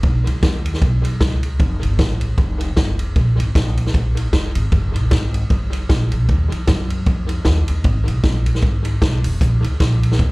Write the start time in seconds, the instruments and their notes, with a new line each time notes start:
0.03 upright bass B1, kick, ride
0.27 upright bass C#2, ride
0.43 upright bass D#2, kick, snare, ride
0.66 ride
0.74 snare
0.82 upright bass B1, kick, ride
1.05 ride
1.21 upright bass C#2, kick, snare, ride
1.43 ride
1.60 upright bass F1, kick, ride
1.83 upright bass G1, ride
1.99 upright bass A1, kick, snare, ride
2.21 ride
2.38 upright bass F1, kick, ride
2.61 ride
2.77 upright bass G1, kick, snare, ride
2.99 upright bass F1, ride
3.16 upright bass A#1, kick, ride
3.39 upright bass G#1, ride
3.55 upright bass A#1, kick, snare, ride
3.77 ride
3.87 snare
3.94 upright bass A#1, kick, ride
4.17 ride
4.33 upright bass F1, kick, snare, ride
4.55 upright bass G#1, ride
4.72 upright bass F#1, kick, ride
4.95 upright bass A#1, ride
5.11 upright bass G#1, kick, snare, ride
5.34 ride
5.50 upright bass F#1, kick, ride
5.73 ride
5.89 upright bass A#1, kick, snare, ride
6.12 upright bass A#1, ride
6.29 upright bass D#2, kick, ride
6.52 upright bass F2, ride
6.67 upright bass F#2, kick, snare, ride
6.90 ride
7.06 upright bass F2, kick, ride
7.29 ride
7.45 upright bass D#2, kick, snare, ride
7.68 upright bass D#2, ride
7.84 upright bass G#1, kick, ride
8.08 upright bass B1, ride
8.24 upright bass A#1, kick, snare, ride
8.46 ride
8.55 snare
8.62 upright bass G#1, kick, ride
8.85 ride
9.02 upright bass B1, kick, snare, ride
9.24 upright bass F1, open hi-hat, ride
9.41 upright bass A#1, kick, hi-hat pedal, ride
9.64 upright bass D2, ride
9.80 upright bass A#1, kick, snare, ride
10.03 ride
10.12 snare
10.19 upright bass D2, kick, ride